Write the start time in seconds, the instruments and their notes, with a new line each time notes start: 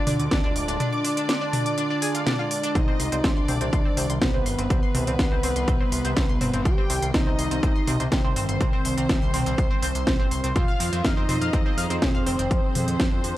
Already playing: ambient pad D3 G#3 F4, analog synth lead D4, violin section D5
0.07 analog synth bass D2, synth pluck D4 D5, open hi-hat, mid tom
0.19 analog synth bass D2, synth pluck D6, closed hi-hat
0.31 analog synth bass D2, synth pluck D4 D5, analog synth lead D4, violin section D5, kick, snare, closed hi-hat
0.44 analog synth bass D2, synth pluck D4 D5
0.56 analog synth bass D1, synth pluck D6, open hi-hat
0.68 analog synth bass D1, synth pluck D4 D5, closed hi-hat
0.80 synth pluck D4 D5, closed hi-hat, mid tom
0.93 synth pluck D6
1.04 synth pluck D4 D5, open hi-hat
1.17 synth pluck D4 D5, closed hi-hat
1.29 synth pluck D6, snare, closed hi-hat
1.41 synth pluck D4 D5
1.53 synth pluck D4 D5, open hi-hat, mid tom
1.66 synth pluck D6, closed hi-hat
1.78 synth pluck D4 D5, closed hi-hat
1.90 synth pluck D4 D5
2.02 synth pluck G#4 G#5, open hi-hat
2.15 synth pluck F4 F5, closed hi-hat
2.27 synth pluck D4 D5, snare, closed hi-hat, mid tom
2.39 synth pluck F4 F5
2.51 synth pluck D6, open hi-hat
2.63 synth pluck D4 D5, closed hi-hat
2.75 analog synth bass C2, ambient pad C3 D#3 G3, synth pluck C4 C5, analog synth lead D#4, violin section D#5, kick, closed hi-hat, mid tom
2.88 synth pluck C4 C5
3.00 analog synth bass C2, synth pluck C6, open hi-hat
3.12 analog synth bass C2, synth pluck C4 C5, closed hi-hat
3.24 analog synth bass C2, synth pluck C4 C5, analog synth lead D4, violin section D5, kick, snare, closed hi-hat
3.37 analog synth bass C2, synth pluck C6
3.48 analog synth bass C2, synth pluck C4 C5, open hi-hat, mid tom
3.61 analog synth bass C2, synth pluck C4 C5, closed hi-hat
3.73 analog synth bass C2, synth pluck C6, kick, closed hi-hat
3.85 synth pluck C4 C5
3.97 analog synth bass C2, synth pluck C4 C5, open hi-hat
4.10 analog synth bass C2, synth pluck C6, closed hi-hat
4.22 analog synth bass C2, analog synth lead B3, synth pluck C4 C5, violin section B4, kick, snare, closed hi-hat, mid tom
4.34 analog synth bass C2, synth pluck C4 C5
4.46 analog synth bass G1, synth pluck C6, open hi-hat
4.58 analog synth bass G1, synth pluck C4 C5, closed hi-hat
4.70 analog synth bass C2, synth pluck C4 C5, kick, closed hi-hat
4.83 synth pluck C6
4.95 analog synth bass C2, synth pluck C4 C5, open hi-hat, mid tom
5.07 analog synth bass C2, synth pluck C4 C5, closed hi-hat
5.19 analog synth bass C2, synth pluck C6, kick, snare, closed hi-hat
5.32 analog synth bass C2, synth pluck C4 C5
5.43 analog synth bass C2, synth pluck C4 C5, open hi-hat
5.56 analog synth bass C2, synth pluck C6, closed hi-hat
5.68 analog synth bass C2, synth pluck C4 C5, kick, closed hi-hat, mid tom
5.81 synth pluck C4 C5
5.92 analog synth bass C2, synth pluck C6, open hi-hat
6.05 analog synth bass C2, synth pluck C4 C5, closed hi-hat
6.17 analog synth bass C2, synth pluck C4 C5, kick, snare, closed hi-hat
6.29 analog synth bass C2, synth pluck C6
6.41 analog synth bass G1, synth pluck C4 C5, open hi-hat, mid tom
6.54 analog synth bass G1, synth pluck C4 C5, closed hi-hat
6.65 analog synth bass C2, analog synth lead G4, violin section G5, synth pluck C6, kick, closed hi-hat
6.78 synth pluck C4 C5
6.90 analog synth bass C2, synth pluck C4 C5, open hi-hat
7.02 analog synth bass C2, synth pluck C6, closed hi-hat
7.14 analog synth bass C2, synth pluck C4 C5, analog synth lead D#4, violin section D#5, kick, snare, closed hi-hat, mid tom
7.27 analog synth bass C2, synth pluck C4 C5
7.39 analog synth bass C2, synth pluck C6, open hi-hat
7.51 analog synth bass C2, synth pluck C4 C5, closed hi-hat
7.63 analog synth bass C2, synth pluck C4 C5, kick, closed hi-hat
7.76 synth pluck C6
7.87 analog synth bass C2, synth pluck C4 C5, open hi-hat, mid tom
8.00 analog synth bass C2, synth pluck C4 C5, closed hi-hat
8.12 analog synth bass C2, analog synth lead C4, violin section C5, synth pluck C6, kick, snare, closed hi-hat
8.24 analog synth bass C2, synth pluck C4 C5
8.36 analog synth bass G1, synth pluck C4 C5, open hi-hat
8.49 analog synth bass G1, synth pluck C6, closed hi-hat
8.61 analog synth bass C2, synth pluck C4 C5, kick, closed hi-hat, mid tom
8.73 synth pluck C4 C5
8.85 analog synth bass C2, synth pluck C6, open hi-hat
8.97 analog synth bass C2, synth pluck C4 C5, closed hi-hat
9.09 analog synth bass C2, synth pluck C4 C5, kick, snare, closed hi-hat
9.22 analog synth bass C2, synth pluck C6
9.34 analog synth bass C2, synth pluck C4 C5, open hi-hat, mid tom
9.46 analog synth bass C2, synth pluck C4 C5, closed hi-hat
9.58 analog synth bass C2, synth pluck C6, kick, closed hi-hat
9.71 synth pluck C4 C5
9.82 analog synth bass C2, synth pluck C4 C5, open hi-hat
9.95 analog synth bass C2, synth pluck C6, closed hi-hat
10.07 analog synth bass C2, synth pluck C4 C5, kick, snare, closed hi-hat, mid tom
10.19 analog synth bass G1, synth pluck C4 C5
10.31 analog synth bass C2, synth pluck C6, open hi-hat
10.44 analog synth bass C2, synth pluck C4 C5, closed hi-hat
10.56 analog synth bass F2, ambient pad F3 G#4, synth pluck C4 C5, analog synth lead F4, violin section F5, kick, closed hi-hat, mid tom
10.68 synth pluck F5 F6
10.80 analog synth bass F2, synth pluck C4 C5, open hi-hat
10.93 analog synth bass F2, synth pluck C4 C5, closed hi-hat
11.04 analog synth bass F2, analog synth lead D#4, violin section D#5, synth pluck F5 F6, kick, snare, closed hi-hat
11.17 analog synth bass F2, synth pluck C4 C5
11.29 analog synth bass F2, synth pluck C4 C5, open hi-hat, mid tom
11.41 analog synth bass F2, synth pluck F5 F6, closed hi-hat
11.53 analog synth bass F2, synth pluck C4 C5, kick, closed hi-hat
11.66 synth pluck C4 C5
11.78 analog synth bass F2, synth pluck F5 F6, open hi-hat
11.90 analog synth bass F2, synth pluck C4 C5, closed hi-hat
12.02 analog synth bass F2, synth pluck C4 C5, analog synth lead C4, violin section C5, kick, snare, closed hi-hat, mid tom
12.15 analog synth bass F2, synth pluck F5 F6
12.26 analog synth bass F1, synth pluck C4 C5, open hi-hat
12.39 analog synth bass F1, synth pluck C4 C5, closed hi-hat
12.51 analog synth bass F2, ambient pad D4, kick, closed hi-hat
12.75 analog synth bass F2, open hi-hat, mid tom
12.88 analog synth bass F2, closed hi-hat
13.00 analog synth bass F2, kick, snare, closed hi-hat
13.12 analog synth bass F2
13.24 analog synth bass F2, open hi-hat